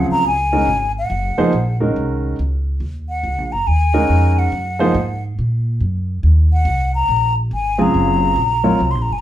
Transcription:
0.00 0.21 C#3 medium
0.00 0.22 F3 medium
0.00 0.21 F#3 medium
0.00 0.22 C4 medium
0.00 0.22 G#4 medium
0.10 0.25 A#5 loud
0.10 muted upright bass stroke soft
0.25 0.66 C#2 medium
0.25 0.92 G#5 medium
0.53 0.66 D#3 medium
0.53 0.66 G#3 medium
0.53 0.66 C#4 soft
0.53 0.66 F#4 soft
0.53 0.66 A#4 medium
0.66 1.08 G#1 medium
0.98 1.78 F#5 medium
1.10 1.36 F#1 medium
1.38 1.51 F3 medium
1.38 1.51 A#3 medium
1.38 1.51 D#4 medium
1.38 1.51 G#4 medium
1.38 1.51 C5 medium
1.38 muted upright bass stroke soft
1.53 1.94 A#1 medium
1.80 2.35 D#3 medium
1.80 2.35 G#3 soft
1.80 2.35 C#4 soft
1.80 2.35 F#4 soft
1.80 2.35 A#4 medium
1.96 2.37 C2 medium
2.39 2.80 C#2 medium
2.80 3.22 D#2 medium
3.09 3.54 F#5 medium
3.23 3.38 C#2 medium
3.38 3.52 A#1 soft
3.52 3.66 F#1 medium
3.52 3.69 A#5 medium
3.67 4.09 D#2 medium
3.67 4.40 G#5 loud
3.94 4.49 D#3 medium
3.94 4.49 G#3 medium
3.94 4.49 C#4 medium
3.94 4.49 F#4 medium
3.94 4.49 A#4 medium
4.09 4.51 F2 medium
4.39 5.23 F#5 medium
4.52 4.94 F#2 medium
4.79 4.93 F3 medium
4.79 4.93 A#3 medium
4.79 4.94 D#4 medium
4.79 4.93 G#4 medium
4.79 4.94 C5 medium
4.94 5.36 G#2 medium
5.39 5.80 A#2 medium
5.80 6.22 F#2 medium
6.23 6.64 D#2 medium
6.53 6.92 F#5 medium
6.65 7.07 C2 medium
6.95 7.34 A#5 loud
7.08 7.50 A#1 medium
7.51 7.93 G#1 medium
7.51 7.83 G#5 medium
7.78 8.34 C#3 medium
7.78 8.34 F#3 medium
7.78 8.34 C4 medium
7.78 8.34 F4 medium
7.78 8.34 G#4 medium
7.78 8.93 A#5 medium
7.94 8.35 F#1 medium
8.36 8.78 A#1 medium
8.64 8.78 F#3 medium
8.64 8.78 C4 medium
8.64 8.78 F4 medium
8.64 8.78 A#4 medium
8.64 8.78 C#5 medium
8.80 8.95 C2 medium
8.91 9.08 A#1 medium
8.91 9.04 C6 medium
9.02 9.14 A#5 medium
9.09 9.21 F#1 medium
9.09 9.20 G#5 medium

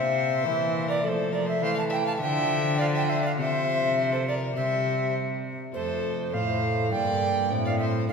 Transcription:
0.00 0.47 C3 medium
0.00 1.06 C3 medium
0.00 0.46 C4 medium
0.00 1.00 C4 medium
0.00 1.06 G4 medium
0.00 0.90 C5 medium
0.00 0.89 E5 loud
0.45 1.03 E3 medium
0.45 1.06 E3 medium
0.45 1.05 A#3 medium
0.89 1.05 A#4 medium
0.89 1.04 D5 loud
1.00 1.63 F3 medium
1.00 2.16 A3 medium
1.00 1.61 A3 medium
1.00 2.22 C4 medium
1.00 4.58 A4 medium
1.00 1.34 A4 medium
1.00 1.10 D5 medium
1.09 1.32 C5 loud
1.32 1.48 A#4 medium
1.32 1.47 D5 medium
1.46 1.62 C5 medium
1.46 1.64 E5 medium
1.62 2.20 E3 medium
1.62 2.23 E3 medium
1.62 2.20 A3 medium
1.62 1.74 C5 medium
1.62 1.77 F5 loud
1.75 1.81 F5 medium
1.75 1.84 A5 medium
1.90 1.96 E5 medium
1.90 2.06 G5 loud
2.05 2.20 F5 medium
2.05 2.13 A5 loud
2.17 3.40 D3 medium
2.17 3.39 A3 medium
2.17 3.39 D4 medium
2.17 3.34 F4 medium
2.17 2.80 E5 loud
2.22 2.79 F3 medium
2.22 2.79 G5 loud
2.78 3.17 F3 medium
2.78 2.96 D5 medium
2.78 2.87 F5 loud
2.95 3.07 E5 medium
2.95 3.11 G5 loud
3.08 3.22 C5 medium
3.08 3.24 E5 medium
3.23 3.29 D5 medium
3.23 3.32 F5 medium
3.34 4.56 C3 medium
3.34 4.52 C4 medium
3.34 4.57 F4 medium
3.34 4.53 G4 medium
3.38 4.56 C3 medium
3.38 4.59 F3 medium
3.38 4.13 C5 medium
3.38 4.12 E5 loud
4.12 4.27 A4 medium
4.12 4.27 C5 medium
4.28 4.55 A#4 medium
4.28 4.35 D5 medium
4.53 5.53 C3 medium
4.53 5.77 C3 medium
4.53 5.70 C4 medium
4.53 5.76 G4 medium
4.53 5.14 C5 medium
4.53 5.14 E5 medium
4.57 5.46 G3 medium
5.71 6.95 F2 medium
5.71 6.29 C4 medium
5.71 6.30 F4 medium
5.71 6.32 A4 medium
5.71 6.29 A4 medium
5.71 6.35 C5 loud
5.75 6.35 F2 medium
5.75 6.30 A3 medium
6.30 6.93 A2 medium
6.30 6.94 A3 medium
6.30 6.93 C4 soft
6.30 6.93 F4 medium
6.30 6.94 A4 medium
6.30 6.91 C5 medium
6.30 6.91 F5 loud
6.34 6.95 A2 medium
6.88 7.53 G2 medium
6.88 8.12 G2 medium
6.88 8.13 G3 medium
6.88 8.05 D4 medium
6.88 8.06 A#4 medium
6.88 7.64 D5 medium
6.88 7.64 G5 loud
6.93 7.53 A#3 medium
7.51 8.12 A2 medium
7.51 8.08 C4 medium
7.65 7.71 D5 medium
7.65 7.78 F5 medium
7.79 8.09 C5 medium
7.79 7.85 E5 medium
8.05 8.13 A#2 medium
8.05 8.13 A#3 medium
8.05 8.13 D4 medium
8.05 8.13 A#4 medium
8.05 8.13 F5 loud
8.09 8.13 D4 medium
8.09 8.13 D5 medium

